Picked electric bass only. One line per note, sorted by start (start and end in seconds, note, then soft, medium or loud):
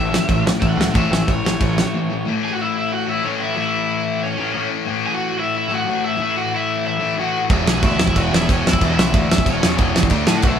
0.00 0.17 A1 loud
0.29 0.51 A1 medium
0.62 0.73 A1 loud
0.77 0.88 C#2 medium
0.95 1.06 A1 medium
1.11 1.22 A1 medium
1.28 1.39 A1 medium
1.45 1.56 A1 medium
1.61 1.82 A1 medium
7.50 7.65 E1 loud
7.66 7.81 B1 medium
7.83 7.98 D2 loud
7.99 8.14 E1 medium
8.16 8.31 E1 loud
8.33 8.47 E1 loud
8.49 8.64 E1 loud
8.65 8.80 E1 medium
8.81 8.96 E1 medium
8.99 9.13 B1 loud
9.13 9.28 D2 loud
9.31 9.45 E1 medium
9.46 9.61 E1 loud
9.64 9.78 E1 loud
9.79 9.94 E1 medium
9.97 10.10 E1 loud
10.10 10.26 D2 loud
10.28 10.42 A2 loud
10.43 10.59 B1 loud